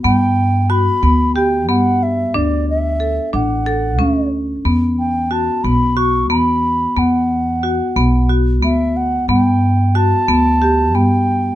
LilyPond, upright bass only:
\new Staff \with { instrumentName = "Upright bass" } { \clef bass \time 7/8 \key e \dorian \tempo 4 = 91 g,4. d,4 g,4 | d,4. a,,4 d,4 | e,4. b,,4 e,4 | e,4. b,,4 d,4 |
g,4. d,4 g,4 | }